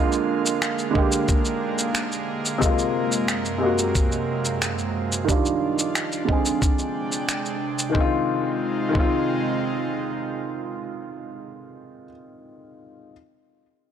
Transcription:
0.00 0.89 D3 medium
0.00 2.59 D3 medium
0.00 0.90 G#3 medium
0.00 5.24 G#3 medium
0.00 0.92 A#3 medium
0.00 5.24 A#3 medium
0.00 0.93 F4 medium
0.00 5.24 F5 medium
0.12 shaker soft
0.46 shaker medium
0.62 finger snap medium
0.62 shaker soft
0.79 shaker soft
0.91 2.56 D3 medium
0.91 2.57 G#3 medium
0.95 2.58 A#3 medium
0.95 2.59 G4 medium
0.95 kick medium
1.12 shaker medium
1.28 kick loud
1.28 shaker soft
1.45 shaker soft
1.78 shaker medium
1.95 finger snap medium
1.95 shaker soft
2.12 shaker soft
2.45 shaker medium
2.58 5.26 F#2 medium
2.58 3.56 C3 medium
2.58 5.26 C3 medium
2.58 3.57 G#3 medium
2.58 kick loud
2.58 shaker soft
2.63 3.58 A#3 medium
2.63 3.60 F4 medium
2.79 shaker soft
3.12 shaker medium
3.28 finger snap medium
3.28 shaker soft
3.45 shaker soft
3.58 5.23 C3 medium
3.58 5.24 G#3 medium
3.63 5.25 A#3 medium
3.63 5.26 F#4 medium
3.78 shaker medium
3.95 kick loud
3.95 shaker soft
4.12 shaker soft
4.45 shaker medium
4.62 finger snap medium
4.62 shaker soft
4.78 shaker soft
5.12 shaker medium
5.25 6.22 D#3 medium
5.25 6.60 F3 medium
5.25 6.24 G3 medium
5.25 6.60 D4 medium
5.25 6.60 F4 medium
5.29 6.25 D4 medium
5.29 6.26 F4 medium
5.29 kick loud
5.29 shaker soft
5.45 shaker soft
5.79 shaker medium
5.95 finger snap medium
5.95 shaker soft
6.12 shaker soft
6.25 7.89 D3 medium
6.25 7.90 G#3 medium
6.25 kick medium
6.30 7.92 C4 medium
6.30 7.93 G#4 medium
6.45 shaker medium
6.62 7.94 C3 medium
6.62 7.94 G#3 medium
6.62 7.94 D4 medium
6.62 7.94 G5 medium
6.62 kick loud
6.62 shaker soft
6.79 shaker soft
7.12 shaker medium
7.29 finger snap medium
7.29 shaker soft
7.45 shaker soft
7.79 shaker medium
7.90 8.11 D#3 medium
7.90 8.13 G#3 medium
7.95 11.38 C3 medium
7.95 11.38 G#3 medium
7.95 8.15 C4 medium
7.95 11.38 D#4 medium
7.95 11.38 F4 medium
7.95 kick medium
8.01 8.17 F4 medium
8.89 12.05 D#3 medium
8.89 12.06 G#3 medium
8.95 12.08 C4 medium
8.95 kick medium
9.00 12.10 F4 medium

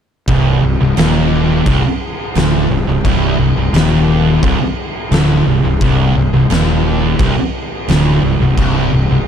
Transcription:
0.28 0.60 C1 loud
0.28 0.62 C2 loud
0.28 kick loud
0.28 crash medium
0.62 0.79 C1 medium
0.62 0.81 C2 medium
0.80 0.96 C1 medium
0.80 0.98 C2 medium
0.97 1.62 D#1 loud
0.97 1.66 D#2 loud
0.97 snare loud
0.97 crash medium
1.66 1.82 C1 loud
1.66 1.83 C2 loud
1.66 kick loud
1.66 crash medium
1.85 muted fingered electric bass stroke soft
1.85 muted distorted electric guitar stroke medium
2.35 2.68 D1 loud
2.35 2.70 D2 loud
2.35 snare loud
2.35 crash medium
2.70 2.86 C1 medium
2.70 2.88 C2 medium
2.88 3.04 C1 medium
2.88 3.05 C2 medium
3.05 3.37 C1 loud
3.05 3.38 C2 loud
3.05 kick loud
3.05 crash medium
3.39 3.55 C1 medium
3.39 3.56 C2 medium
3.56 3.72 C1 medium
3.56 3.74 C2 medium
3.73 4.38 D#1 medium
3.73 4.42 D#2 loud
3.73 snare loud
3.73 crash medium
4.43 4.59 C1 loud
4.43 4.59 C2 loud
4.43 kick loud
4.43 crash medium
4.59 muted fingered electric bass stroke soft
4.59 muted distorted electric guitar stroke medium
5.11 5.44 D1 loud
5.11 5.46 D2 loud
5.11 snare loud
5.11 crash medium
5.46 5.62 C1 medium
5.46 5.62 C2 medium
5.63 5.80 C1 medium
5.63 5.80 C2 medium
5.81 6.13 C1 medium
5.81 6.15 C2 loud
5.81 kick loud
5.81 crash medium
6.15 6.31 C1 medium
6.15 6.33 C2 medium
6.33 6.49 C1 medium
6.33 6.50 C2 medium
6.50 7.15 D#1 loud
6.50 7.18 D#2 loud
6.50 snare loud
6.50 crash medium
7.19 7.35 C1 medium
7.19 7.36 C2 loud
7.19 kick loud
7.19 crash medium
7.36 muted fingered electric bass stroke soft
7.36 muted distorted electric guitar stroke medium
7.88 8.21 D1 medium
7.88 8.23 D2 loud
7.88 snare loud
7.88 crash medium
8.23 8.39 C1 medium
8.23 8.41 C2 medium
8.41 8.57 C1 medium
8.41 8.58 C2 medium
8.57 8.90 C1 medium
8.57 8.92 C2 loud
8.57 kick loud
8.57 crash medium
8.92 9.08 C1 medium
8.92 9.10 C2 medium
9.09 9.26 C1 medium
9.09 9.28 C2 medium

